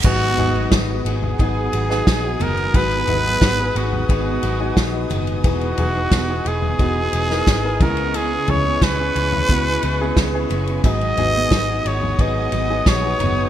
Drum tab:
CC |x---------------|----------------|----------------|----------------|
RD |--x-x-x-x-x-x-xx|xxx-x-x-x-x-x-xx|xxx-x-x-x-x-x-xx|x-x-x-x-x-x-x-xx|
SD |----o------oo---|----o-------o---|----o------oo---|----o-------o---|
FT |--o----o------o-|--o----o--------|--o----o------o-|--o----o--------|
BD |o---o---o---o---|o---o---o---o---|o---o---o---o-o-|----o---o---o---|

CC |----------------|
RD |xxx-x-x-x-x-x-x-|
SD |----o-------o---|
FT |--o----o------o-|
BD |o---o---o---o---|